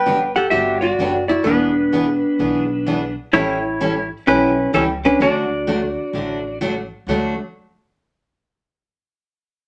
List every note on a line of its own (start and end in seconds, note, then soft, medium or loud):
0.00 0.33 G1 medium
0.00 0.33 B4 medium
0.00 0.34 B4 medium
0.00 0.33 G5 medium
0.06 0.18 D3 medium
0.06 0.18 F#3 medium
0.06 0.18 B3 medium
0.06 0.18 D4 medium
0.06 0.18 G4 medium
0.36 0.51 G4 medium
0.36 0.51 A4 medium
0.36 0.50 F#5 loud
0.50 0.92 G1 medium
0.50 0.75 D3 medium
0.50 0.75 F#3 medium
0.50 0.75 B3 medium
0.50 0.75 D4 medium
0.50 0.81 F#4 medium
0.50 0.82 G4 medium
0.50 0.75 G4 medium
0.50 0.81 E5 loud
0.81 1.26 F#4 medium
0.81 1.27 F#4 medium
0.81 1.27 D5 medium
0.99 1.39 F#1 medium
0.99 1.11 D3 medium
0.99 1.12 F#3 medium
0.99 1.12 B3 medium
0.99 1.12 D4 medium
0.99 1.12 G4 medium
1.28 1.44 E4 medium
1.28 1.45 F#4 medium
1.28 1.45 D5 medium
1.44 2.20 E1 loud
1.44 1.69 E3 medium
1.44 3.13 B3 medium
1.44 1.69 B3 medium
1.44 1.69 D4 medium
1.44 3.14 D4 medium
1.44 1.69 G#4 medium
1.44 3.13 B4 medium
1.92 2.05 E3 medium
1.92 2.05 B3 medium
1.92 2.05 D4 medium
1.92 2.05 G#4 medium
2.39 3.14 B1 medium
2.39 2.62 E3 medium
2.39 2.62 B3 medium
2.39 2.63 D4 medium
2.39 2.63 G#4 medium
2.86 2.99 E3 medium
2.86 2.99 B3 medium
2.86 2.99 D4 medium
2.86 2.99 G#4 medium
3.33 4.09 A1 medium
3.33 3.56 E3 medium
3.33 3.57 G3 medium
3.33 3.57 C#4 medium
3.33 4.07 E4 medium
3.33 4.08 E4 medium
3.33 3.57 E4 medium
3.33 3.57 A4 medium
3.33 4.08 C#5 loud
3.80 3.92 E3 medium
3.80 3.92 G3 medium
3.80 3.93 C#4 medium
3.80 3.93 E4 medium
3.80 3.93 A4 medium
4.27 4.67 B1 medium
4.27 4.50 E3 medium
4.27 4.50 G3 medium
4.27 4.71 C#4 medium
4.27 4.50 C#4 medium
4.27 4.50 E4 medium
4.27 4.71 E4 medium
4.27 4.50 A4 medium
4.27 4.71 B4 loud
4.73 5.14 C#2 medium
4.73 4.86 E3 medium
4.73 4.86 G3 medium
4.73 4.82 C#4 medium
4.73 4.86 C#4 medium
4.73 4.83 C#4 medium
4.73 4.86 E4 medium
4.73 4.83 A4 medium
4.73 4.86 A4 medium
5.05 5.19 C#4 medium
5.05 5.20 D4 medium
5.05 5.21 B4 medium
5.20 5.95 D2 medium
5.20 5.43 D3 medium
5.20 5.43 F#3 medium
5.20 5.43 A3 medium
5.20 5.43 D4 medium
5.20 6.58 D4 medium
5.20 5.44 F#4 medium
5.20 6.58 F#4 medium
5.20 6.58 D5 loud
5.67 5.79 D3 medium
5.67 5.79 F#3 medium
5.67 5.79 A3 medium
5.67 5.80 D4 medium
5.67 5.80 F#4 medium
6.13 6.89 A1 medium
6.13 6.37 D3 medium
6.13 6.37 F#3 medium
6.13 6.37 A3 medium
6.13 6.37 D4 medium
6.13 6.38 F#4 medium
6.61 6.73 D3 medium
6.61 6.73 F#3 medium
6.61 6.73 A3 medium
6.61 6.73 D4 medium
6.61 6.73 F#4 medium
7.07 7.36 D2 medium
7.07 7.33 D3 medium
7.07 7.33 F#3 medium
7.07 7.34 A3 medium
7.07 7.34 D4 medium
7.07 7.34 F#4 medium